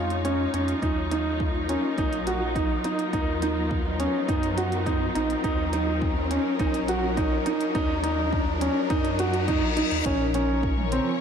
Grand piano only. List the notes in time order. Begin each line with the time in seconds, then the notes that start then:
Already playing: F4
0.25 C#4
0.54 C#4
0.82 D#4
1.11 D#4
1.69 C#4
1.98 D#4
2.27 F#4
2.56 D#4
2.85 D#4
3.13 D#4
3.42 D#4
4.00 C#4
4.28 D#4
4.57 F#4
4.86 D#4
5.15 D#4
5.44 D#4
5.73 D#4
6.31 C#4
6.60 D#4
6.89 F#4
7.17 D#4
7.46 D#4
7.75 D#4
8.03 D#4
8.61 C#4
8.90 D#4
9.19 F#4
9.48 D#4
9.77 D#4
10.06 C#4
10.35 C#4
10.92 C4